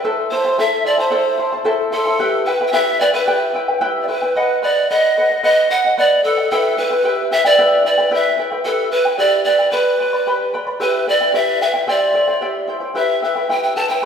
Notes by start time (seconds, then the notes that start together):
0.04 E4 A4 C5 E5 A5
0.31 E4 C5 E5 A5
0.45 E4 C5 A5
0.58 E4 A4 C5 E5 A5
0.85 E4 C5 D5 E5 A5
0.98 E4 C5 A5
1.11 E4 A4 C5 E5 A5
1.38 E4 C5 E5 A5
1.52 E4 C5 A5
1.64 E4 A4 C5 E5 A5
1.92 E4 A4 C5 E5 A5
2.06 E4 C5 A5
2.20 E4 G4 B4 E5 G5
2.45 E4 B4 E5 G5
2.61 E4 B4 G5
2.67 G5
2.72 E4 G4 B4 E5 G5
3.00 E4 B4 D5 E5 G5
3.13 E4 B4 G5
3.27 E4 G4 B4 E5 G5
3.54 E4 B4 E5 G5
3.68 E4 B4 G5
3.81 E4 G4 B4 E5 G5
4.02 D5
4.08 E4 B4 E5 G5
4.22 E4 B4 G5
4.36 B4 D#5 F#5
4.62 B4 D5 D#5 F#5
4.76 D#5 F#5
4.90 B4 D#5 F#5
5.17 B4 D#5 F#5
5.29 D#5 F#5
5.43 B4 D#5 F#5
5.70 B4 D#5 F#5
5.85 D#5 F#5
5.98 B4 D5 D#5 F#5
6.24 A4 B4 D#5 F#5
6.37 D#5 F#5
6.51 E4 G4 A4 B4 E5 G5
6.78 E4 B4 E5 G5
6.91 E4 B4 G5
7.04 E4 G4 B4 E5 G5
7.31 E4 B4 E5 G5
7.45 E4 B4 D5 G5
7.58 E4 G4 B4 E5 G5
7.84 E4 B4 D5 E5 G5
7.98 E4 B4 G5
8.11 E4 G4 B4 E5 G5
8.38 E4 B4 E5 G5
8.52 E4 B4 G5
8.65 E4 G4 A4 B4 E5 G5
8.91 E4 B4 E5 G5
9.05 E4 B4 G5
9.18 E4 G4 B4 D5 E5 G5
9.45 E4 B4 D5 E5 G5
9.59 E4 B4 G5
9.71 G4 B4 D5 G5 B5
10.00 B4 D5 G5 B5
10.13 B4 D5 B5
10.27 G4 B4 D5 G5 B5
10.54 B4 D5 G5 B5
10.67 B4 D5 B5
10.80 E4 G4 B4 E5 G5
11.06 E4 B4 D5 E5 G5
11.21 E4 B4 G5
11.34 E4 G4 B4 E5 G5
11.60 E4 B4 E5 G5
11.73 E4 B4 G5
11.87 E4 G4 C5 D5 E5 G5
12.13 E4 C5 E5 G5
12.27 E4 C5 G5
12.41 E4 G4 C5 E5 G5
12.67 E4 C5 E5 G5
12.80 E4 C5 G5
12.95 E4 G4 B4 E5 G5
13.22 E4 B4 E5 G5
13.35 E4 B4 G5
13.49 E4 G4 B4 E5 G5
13.63 G5
13.76 E4 B4 E5 G5 A5
13.89 E4 B4 G5